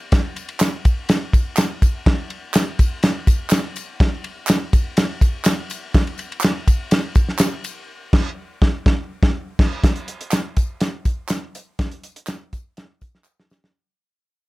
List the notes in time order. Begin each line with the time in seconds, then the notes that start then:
0.12 kick, snare, ride, tambourine
0.36 ride, tambourine
0.49 ride
0.59 snare, clap, ride, tambourine
0.85 kick, ride, tambourine
1.09 snare, ride, tambourine
1.33 kick, ride, tambourine
1.57 snare, clap, ride, tambourine
1.82 kick, ride, tambourine
2.06 kick, snare, ride
2.30 ride
2.54 snare, clap, ride, tambourine
2.79 kick, ride, tambourine
3.03 snare, ride, tambourine
3.27 kick, ride, tambourine
3.50 snare, clap, ride, tambourine
3.76 ride, tambourine
4.00 kick, snare, ride
4.24 ride
4.47 snare, clap, ride, tambourine
4.73 kick, ride, tambourine
4.97 snare, ride, tambourine
5.21 kick, ride, tambourine
5.45 snare, clap, ride, tambourine
5.70 ride, tambourine
5.94 kick, snare, ride, tambourine
6.07 ride
6.18 ride, tambourine
6.32 ride
6.41 snare, clap, ride, tambourine
6.68 kick, ride, tambourine
6.91 snare, ride, tambourine
7.15 kick, ride, tambourine
7.29 snare
7.39 snare, clap, ride, tambourine
7.64 ride, tambourine
8.13 kick, snare, crash
8.62 kick, snare
8.86 kick, snare
9.23 kick, snare
9.59 kick, snare, crash
9.84 kick, snare, closed hi-hat, tambourine
9.96 closed hi-hat
10.08 closed hi-hat
10.21 closed hi-hat
10.31 snare, clap, closed hi-hat, tambourine
10.57 kick, closed hi-hat, tambourine
10.81 snare, closed hi-hat, tambourine
11.05 kick, closed hi-hat, tambourine
11.28 snare, clap, closed hi-hat, tambourine
11.55 closed hi-hat, tambourine
11.79 kick, snare, closed hi-hat, tambourine
11.91 closed hi-hat
12.04 closed hi-hat, tambourine
12.16 closed hi-hat
12.27 snare, clap, closed hi-hat, tambourine
12.53 kick, closed hi-hat, tambourine
12.77 snare, closed hi-hat, tambourine
13.01 kick, closed hi-hat, tambourine
13.15 snare
13.24 clap, tambourine
13.40 snare
13.50 snare, tambourine
13.64 snare